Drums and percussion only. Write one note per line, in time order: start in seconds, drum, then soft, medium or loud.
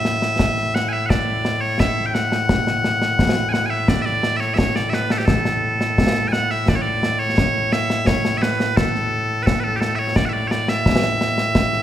0.05 snare medium
0.22 snare medium
0.39 concert bass drum medium
0.39 snare loud
0.58 snare soft
0.76 snare medium
1.10 concert bass drum medium
1.10 snare medium
1.45 snare medium
1.80 concert bass drum medium
1.80 snare loud
2.15 snare medium
2.32 snare medium
2.49 concert bass drum medium
2.49 snare loud
2.67 snare medium
2.84 snare medium
3.02 snare medium
3.19 concert bass drum medium
3.19 snare medium
3.37 snare soft
3.54 snare medium
3.88 concert bass drum medium
3.88 snare medium
4.06 snare soft
4.23 snare medium
4.41 snare soft
4.59 concert bass drum medium
4.59 snare loud
4.76 snare medium
4.93 snare medium
5.10 snare medium
5.28 concert bass drum medium
5.28 snare loud
5.45 snare medium
5.81 snare medium
5.98 concert bass drum medium
5.98 snare loud
6.16 snare soft
6.33 snare medium
6.50 snare soft
6.68 concert bass drum medium
6.68 snare loud
7.03 snare medium
7.38 concert bass drum medium
7.38 snare loud
7.73 snare medium
7.90 snare medium
8.07 concert bass drum medium
8.07 snare loud
8.25 snare medium
8.43 snare medium
8.60 snare medium
8.77 concert bass drum medium
8.77 snare loud
8.95 snare soft
9.47 concert bass drum medium
9.47 snare loud
9.81 snare medium
10.16 concert bass drum medium
10.16 snare loud
10.51 snare medium
10.68 snare medium
10.86 concert bass drum medium
10.86 snare loud
11.03 snare medium
11.21 snare medium
11.38 snare medium
11.55 concert bass drum medium
11.55 snare loud
11.73 snare soft